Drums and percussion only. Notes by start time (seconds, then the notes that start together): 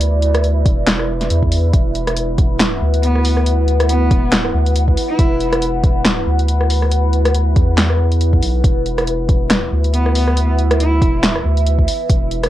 0.01 closed hi-hat
0.22 closed hi-hat
0.35 cross-stick, closed hi-hat
0.44 closed hi-hat
0.66 kick, closed hi-hat
0.87 snare, clap, closed hi-hat
0.99 cross-stick
1.21 snare, closed hi-hat
1.30 closed hi-hat
1.43 kick
1.52 open hi-hat
1.73 kick, closed hi-hat
1.95 closed hi-hat
2.07 cross-stick, closed hi-hat
2.17 closed hi-hat
2.38 kick, closed hi-hat
2.60 snare, clap, closed hi-hat
2.94 closed hi-hat
3.03 closed hi-hat
3.15 cross-stick
3.25 open hi-hat
3.37 cross-stick
3.46 closed hi-hat
3.68 closed hi-hat
3.80 cross-stick, closed hi-hat
3.89 closed hi-hat
4.11 kick, closed hi-hat
4.32 snare, clap, closed hi-hat
4.45 cross-stick
4.66 closed hi-hat
4.76 closed hi-hat
4.88 kick
4.97 open hi-hat
5.19 kick, closed hi-hat
5.40 closed hi-hat
5.53 cross-stick, closed hi-hat
5.62 closed hi-hat
5.84 kick, closed hi-hat
6.05 snare, clap, closed hi-hat
6.39 closed hi-hat
6.48 closed hi-hat
6.61 cross-stick
6.70 open hi-hat
6.82 cross-stick
6.91 closed hi-hat
7.13 closed hi-hat
7.25 cross-stick, closed hi-hat
7.34 closed hi-hat
7.56 kick, closed hi-hat
7.78 snare, clap, closed hi-hat
7.90 cross-stick
8.12 closed hi-hat
8.21 closed hi-hat
8.33 kick
8.43 open hi-hat
8.64 kick, closed hi-hat
8.86 closed hi-hat
8.98 cross-stick, closed hi-hat
9.07 closed hi-hat
9.29 kick, closed hi-hat
9.51 snare, clap, closed hi-hat
9.84 closed hi-hat
9.94 closed hi-hat
10.06 cross-stick
10.15 open hi-hat
10.28 cross-stick
10.37 closed hi-hat
10.59 closed hi-hat
10.71 cross-stick, closed hi-hat
10.80 closed hi-hat
11.02 kick, closed hi-hat
11.23 snare, clap, closed hi-hat
11.36 cross-stick
11.57 closed hi-hat
11.66 closed hi-hat
11.79 kick
11.88 open hi-hat
12.09 kick, closed hi-hat
12.31 closed hi-hat
12.43 cross-stick, closed hi-hat